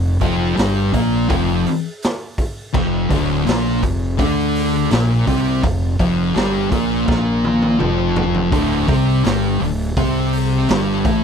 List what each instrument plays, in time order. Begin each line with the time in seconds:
Already playing: fingered electric bass F1, distorted electric guitar F2
0.21 fingered electric bass F1, distorted electric guitar F2 F3, kick, open hi-hat
0.57 fingered electric bass G1, distorted electric guitar G2 G3, snare, open hi-hat
0.93 fingered electric bass A#1, distorted electric guitar A#2 A#3, kick, open hi-hat
1.29 fingered electric bass F1, distorted electric guitar F2 F3, kick, open hi-hat
1.66 open hi-hat
2.02 snare, open hi-hat
2.38 kick, open hi-hat
2.73 fingered electric bass F1, distorted electric guitar F2 F3, kick, crash
3.10 fingered electric bass D1, distorted electric guitar D2 D3, kick, open hi-hat
3.46 fingered electric bass A#1, distorted electric guitar A#2 A#3, snare, open hi-hat
3.82 fingered electric bass F1, distorted electric guitar F2, kick, open hi-hat
4.18 fingered electric bass D2, distorted electric guitar D3 D4, kick, open hi-hat
4.55 open hi-hat
4.90 fingered electric bass A#1, distorted electric guitar A#2 A#3, snare, open hi-hat
5.27 fingered electric bass C2, distorted electric guitar C3 C4, kick, open hi-hat
5.63 fingered electric bass F1, distorted electric guitar F2, kick, open hi-hat
5.99 fingered electric bass F1, distorted electric guitar F2 F3, kick, open hi-hat
6.35 fingered electric bass G1, distorted electric guitar G2 G3, snare, open hi-hat
6.71 fingered electric bass A#1, distorted electric guitar A#2 A#3, kick, open hi-hat
7.06 fingered electric bass A#1, distorted electric guitar A#2 A#3, kick
7.11 snare
7.44 high tom
7.62 high tom
7.79 fingered electric bass F1, distorted electric guitar F2 F3, mid tom
8.16 floor tom
8.35 floor tom
8.52 fingered electric bass D1, distorted electric guitar D2 D3, kick, open hi-hat
8.88 fingered electric bass C2, distorted electric guitar C3 C4, kick, open hi-hat
9.24 fingered electric bass G1, distorted electric guitar G2 G3, snare, open hi-hat
9.60 fingered electric bass D1, distorted electric guitar D2, open hi-hat
9.97 fingered electric bass C2, distorted electric guitar C3 C4, kick, open hi-hat
10.33 open hi-hat
10.69 fingered electric bass G1, distorted electric guitar G2 G3, snare, open hi-hat
11.05 fingered electric bass A1, distorted electric guitar A2 A3, kick, open hi-hat